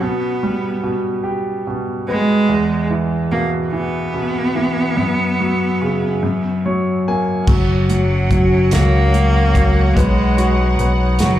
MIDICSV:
0, 0, Header, 1, 6, 480
1, 0, Start_track
1, 0, Tempo, 828729
1, 9, Time_signature, 6, 3, 24, 8
1, 6599, End_track
2, 0, Start_track
2, 0, Title_t, "String section"
2, 0, Program_c, 0, 48
2, 4324, Note_on_c, 0, 78, 62
2, 4325, Note_on_c, 0, 61, 55
2, 4325, Note_on_c, 0, 73, 52
2, 5754, Note_off_c, 0, 61, 0
2, 5770, Note_on_c, 0, 63, 59
2, 6599, Note_off_c, 0, 63, 0
2, 6599, Note_off_c, 0, 73, 0
2, 6599, Note_off_c, 0, 78, 0
2, 6599, End_track
3, 0, Start_track
3, 0, Title_t, "Cello"
3, 0, Program_c, 1, 42
3, 22, Note_on_c, 1, 59, 65
3, 552, Note_off_c, 1, 59, 0
3, 1207, Note_on_c, 1, 56, 92
3, 1658, Note_off_c, 1, 56, 0
3, 1921, Note_on_c, 1, 58, 77
3, 2028, Note_off_c, 1, 58, 0
3, 2158, Note_on_c, 1, 59, 85
3, 3825, Note_off_c, 1, 59, 0
3, 4573, Note_on_c, 1, 54, 73
3, 5047, Note_on_c, 1, 58, 85
3, 5056, Note_off_c, 1, 54, 0
3, 5758, Note_on_c, 1, 56, 70
3, 5766, Note_off_c, 1, 58, 0
3, 6241, Note_off_c, 1, 56, 0
3, 6479, Note_on_c, 1, 54, 87
3, 6599, Note_off_c, 1, 54, 0
3, 6599, End_track
4, 0, Start_track
4, 0, Title_t, "Grand piano"
4, 0, Program_c, 2, 0
4, 0, Control_c, 2, 64, 127
4, 4, Note_on_c, 2, 47, 57
4, 15, Control_c, 2, 64, 0
4, 100, Control_c, 2, 64, 127
4, 250, Note_on_c, 2, 55, 45
4, 474, Note_off_c, 2, 47, 0
4, 482, Note_on_c, 2, 47, 49
4, 716, Note_on_c, 2, 67, 46
4, 959, Note_off_c, 2, 47, 0
4, 967, Note_on_c, 2, 47, 44
4, 1181, Note_off_c, 2, 55, 0
4, 1207, Note_on_c, 2, 59, 49
4, 1415, Note_off_c, 2, 67, 0
4, 1428, Note_off_c, 2, 47, 0
4, 1436, Note_off_c, 2, 59, 0
4, 1441, Note_on_c, 2, 40, 58
4, 1448, Control_c, 2, 64, 0
4, 1544, Control_c, 2, 64, 127
4, 1681, Note_on_c, 2, 52, 45
4, 1921, Note_on_c, 2, 47, 46
4, 2149, Note_off_c, 2, 52, 0
4, 2158, Note_on_c, 2, 52, 46
4, 2389, Note_off_c, 2, 47, 0
4, 2398, Note_on_c, 2, 47, 44
4, 2627, Note_off_c, 2, 52, 0
4, 2636, Note_on_c, 2, 52, 47
4, 2856, Note_off_c, 2, 40, 0
4, 2865, Note_off_c, 2, 47, 0
4, 2871, Note_off_c, 2, 52, 0
4, 2877, Note_on_c, 2, 42, 57
4, 2885, Control_c, 2, 64, 0
4, 2990, Control_c, 2, 64, 127
4, 3130, Note_on_c, 2, 54, 46
4, 3367, Note_on_c, 2, 49, 49
4, 3583, Note_off_c, 2, 42, 0
4, 3596, Note_off_c, 2, 54, 0
4, 3600, Note_off_c, 2, 49, 0
4, 3607, Note_on_c, 2, 42, 53
4, 3612, Control_c, 2, 64, 0
4, 3703, Control_c, 2, 64, 127
4, 3855, Note_on_c, 2, 73, 52
4, 3856, Note_on_c, 2, 54, 44
4, 4077, Note_off_c, 2, 73, 0
4, 4100, Note_on_c, 2, 58, 45
4, 4101, Note_on_c, 2, 80, 55
4, 4310, Note_off_c, 2, 42, 0
4, 4320, Note_off_c, 2, 54, 0
4, 4320, Note_off_c, 2, 80, 0
4, 4329, Note_off_c, 2, 58, 0
4, 4332, Note_on_c, 2, 54, 56
4, 4339, Control_c, 2, 64, 0
4, 4439, Control_c, 2, 64, 127
4, 4565, Note_off_c, 2, 54, 0
4, 4574, Note_on_c, 2, 54, 48
4, 4805, Note_off_c, 2, 54, 0
4, 4813, Note_on_c, 2, 54, 46
4, 5047, Note_off_c, 2, 54, 0
4, 5055, Note_on_c, 2, 54, 43
4, 5285, Note_off_c, 2, 54, 0
4, 5294, Note_on_c, 2, 54, 46
4, 5529, Note_off_c, 2, 54, 0
4, 5538, Note_on_c, 2, 54, 48
4, 5767, Note_off_c, 2, 54, 0
4, 5775, Note_on_c, 2, 59, 61
4, 5779, Control_c, 2, 64, 0
4, 5891, Control_c, 2, 64, 127
4, 6011, Note_on_c, 2, 66, 46
4, 6245, Note_off_c, 2, 59, 0
4, 6254, Note_on_c, 2, 59, 49
4, 6485, Note_off_c, 2, 66, 0
4, 6494, Note_on_c, 2, 66, 49
4, 6599, Note_off_c, 2, 59, 0
4, 6599, Note_off_c, 2, 66, 0
4, 6599, End_track
5, 0, Start_track
5, 0, Title_t, "Fingered electric bass"
5, 0, Program_c, 3, 33
5, 4330, Note_on_c, 3, 30, 80
5, 4788, Note_off_c, 3, 30, 0
5, 4812, Note_on_c, 3, 30, 81
5, 5038, Note_off_c, 3, 30, 0
5, 5053, Note_on_c, 3, 37, 75
5, 5748, Note_off_c, 3, 37, 0
5, 5772, Note_on_c, 3, 35, 80
5, 6225, Note_off_c, 3, 35, 0
5, 6250, Note_on_c, 3, 35, 75
5, 6473, Note_off_c, 3, 35, 0
5, 6486, Note_on_c, 3, 30, 72
5, 6599, Note_off_c, 3, 30, 0
5, 6599, End_track
6, 0, Start_track
6, 0, Title_t, "Drums"
6, 4329, Note_on_c, 9, 36, 100
6, 4329, Note_on_c, 9, 49, 76
6, 4387, Note_off_c, 9, 36, 0
6, 4387, Note_off_c, 9, 49, 0
6, 4573, Note_on_c, 9, 42, 46
6, 4631, Note_off_c, 9, 42, 0
6, 4811, Note_on_c, 9, 36, 72
6, 4811, Note_on_c, 9, 42, 38
6, 4869, Note_off_c, 9, 36, 0
6, 4869, Note_off_c, 9, 42, 0
6, 5047, Note_on_c, 9, 42, 76
6, 5057, Note_on_c, 9, 38, 86
6, 5105, Note_off_c, 9, 42, 0
6, 5115, Note_off_c, 9, 38, 0
6, 5294, Note_on_c, 9, 42, 42
6, 5352, Note_off_c, 9, 42, 0
6, 5532, Note_on_c, 9, 36, 73
6, 5532, Note_on_c, 9, 42, 48
6, 5590, Note_off_c, 9, 36, 0
6, 5590, Note_off_c, 9, 42, 0
6, 5773, Note_on_c, 9, 36, 95
6, 5775, Note_on_c, 9, 42, 77
6, 5831, Note_off_c, 9, 36, 0
6, 5833, Note_off_c, 9, 42, 0
6, 6013, Note_on_c, 9, 42, 45
6, 6071, Note_off_c, 9, 42, 0
6, 6250, Note_on_c, 9, 42, 39
6, 6308, Note_off_c, 9, 42, 0
6, 6480, Note_on_c, 9, 42, 82
6, 6489, Note_on_c, 9, 38, 90
6, 6538, Note_off_c, 9, 42, 0
6, 6547, Note_off_c, 9, 38, 0
6, 6599, End_track
0, 0, End_of_file